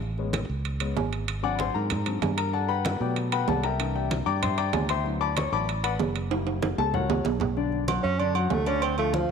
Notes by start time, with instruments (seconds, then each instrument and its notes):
Already playing: fingered electric bass A1
0.02 high conga
0.18 grand piano G#3 B3 C#4, high conga
0.33 high conga, high timbale, low timbale
0.49 fingered electric bass C#2
0.65 high conga, high timbale
0.80 grand piano G#3 B3 C#4, high conga, high timbale
0.97 fingered electric bass G#1, high conga, low timbale
1.13 high conga, high timbale
1.28 high conga, high timbale
1.43 grand piano F#3 C4 D4 D5 F#5 G#5 D6, high conga
1.55 grand piano B5, high timbale, low timbale
1.60 grand piano C5 F#5 G#5 C6, high conga
1.74 fingered electric bass G#2, grand piano A#4 A#5, high conga
1.90 high conga, low conga, high timbale
2.06 grand piano F#3 C4 D4, high conga, high timbale
2.22 fingered electric bass G2, high conga, high timbale, low timbale
2.37 grand piano A#4 A#5, high timbale
2.53 grand piano A4 D5 F#5 A5, high conga
2.69 grand piano B4 F#5 G5 B5, high conga
2.85 high conga, high timbale, low timbale
3.00 fingered electric bass B2, grand piano F#3 A3 B3 G4 B4 D5 G5
3.16 high conga, high timbale
3.32 grand piano B4 F#5 G5 B5, high conga, high timbale
3.48 fingered electric bass C2, grand piano A4 D5 F#5 A5, high conga, low timbale
3.63 grand piano A#4 E5 G5 A#5, high conga, high timbale
3.79 grand piano E3 A#3 D4, high conga, high timbale
3.95 grand piano G4 D5 E5 G5, high conga
4.11 high conga, high timbale, low timbale
4.26 fingered electric bass G2, grand piano D5 G5 A#5 D6, high conga
4.42 grand piano C5 E5 G5 C6, high conga, low conga, high timbale
4.58 grand piano D5 G5 A#5 D6, high conga, high timbale
4.73 fingered electric bass D2, high conga, high timbale, low timbale
4.89 grand piano C5 E5 G5 C6, high timbale
5.04 grand piano F#3 B3 E4, high conga
5.21 grand piano D5 A5 B5 D6, high conga
5.37 grand piano C#5 C#6, high conga, high timbale, low timbale
5.52 fingered electric bass A1, grand piano F#3 B3 E4 D5 A5 B5 D6
5.69 high conga, high timbale
5.84 grand piano B4 D5 F#5 B5, high conga, high timbale
5.99 fingered electric bass F#1, high conga, low timbale
6.15 high conga, high timbale
6.31 grand piano G3 A#3 E4, high conga, high timbale
6.47 high conga, high timbale
6.62 high conga, high timbale
6.78 fingered electric bass C#2, grand piano A4 A5, high conga, low timbale
6.94 grand piano G3 A#3 E4 F#4 A#4 C#5 F#5, high conga, low conga
7.10 high conga, low timbale
7.25 fingered electric bass B1, high conga, low timbale
7.40 low conga, low timbale
7.57 grand piano D3 D4 D5, high conga
7.72 high conga
7.88 grand piano F#3 F#4 F#5, high conga, low timbale, low agogo
8.03 fingered electric bass F#2, tenor saxophone C#4
8.19 grand piano D3 D4 D5, tenor saxophone D4, high conga, low agogo
8.35 grand piano F#3 F#4 F#5, tenor saxophone F#3, high conga, low agogo
8.50 fingered electric bass D2, tenor saxophone A3, high conga, low timbale
8.66 grand piano D3 D4 D5, tenor saxophone C#4, high conga, low agogo
8.82 tenor saxophone C4, high conga, low agogo
8.98 grand piano F3 F4 F5, tenor saxophone A3, high conga, low agogo
9.13 tenor saxophone F3, high conga, low timbale